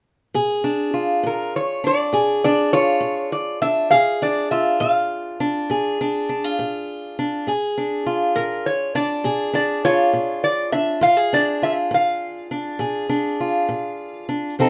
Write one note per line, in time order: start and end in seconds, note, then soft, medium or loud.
0.34 0.88 A#2 medium
0.34 2.13 G#4 medium
0.64 1.83 D4 medium
0.94 2.73 F4 medium
1.23 1.77 A#2 medium
1.23 1.55 A#4 medium
1.56 1.85 C#5 medium
1.84 2.44 D4 medium
1.84 2.43 D5 medium
2.13 2.66 A#2 medium
2.13 3.91 G#4 medium
2.44 3.61 D4 medium
2.44 2.73 D5 medium
2.73 4.51 F4 medium
2.73 3.32 C#5 loud
3.00 3.55 A#2 medium
3.32 3.61 D5 medium
3.62 3.95 D4 medium
3.62 3.90 E5 medium
3.91 4.44 A#2 medium
3.91 5.70 G#4 medium
3.91 4.21 F5 medium
4.22 5.40 D4 medium
4.22 4.51 D5 medium
4.51 6.29 F4 medium
4.51 4.78 E5 medium
4.80 5.34 A#2 medium
4.80 7.14 F5 medium
5.40 6.00 D4 medium
5.70 6.23 A#2 medium
5.70 7.47 G#4 medium
6.01 6.29 D4 medium
6.29 6.44 D4 medium
6.44 7.48 F4 soft
6.59 7.12 A#2 medium
7.19 7.51 D4 medium
7.47 8.00 A#2 medium
7.47 9.24 G#4 medium
7.78 8.95 D4 medium
8.06 9.84 F4 medium
8.36 8.89 A#2 medium
8.36 8.66 A#4 medium
8.66 8.94 C#5 medium
8.95 9.52 D4 medium
8.95 9.54 D5 medium
9.24 9.78 A#2 medium
9.24 10.99 G#4 medium
9.53 10.71 D4 medium
9.53 9.82 D5 medium
9.85 11.01 F4 medium
9.85 10.43 C#5 loud
10.13 10.67 A#2 medium
10.44 10.71 D5 medium
10.72 10.99 D4 medium
10.72 11.02 E5 medium
11.01 11.55 A#2 medium
11.01 11.17 F4 medium
11.01 11.33 F5 loud
11.17 12.78 G#4 medium
11.33 12.50 D4 medium
11.33 11.63 D5 medium
11.62 13.40 F4 soft
11.62 11.71 E5 medium
11.91 12.44 A#2 medium
11.91 14.25 F5 medium
12.51 13.08 D4 medium
12.79 13.33 A#2 medium
12.79 14.54 G#4 medium
13.09 14.27 D4 medium
13.40 14.60 F4 medium
13.69 14.22 A#2 medium
14.29 14.54 D4 medium
14.59 14.69 F2 medium
14.59 14.69 F3 medium
14.59 14.69 C4 medium
14.59 14.69 D#4 medium
14.59 14.69 A4 medium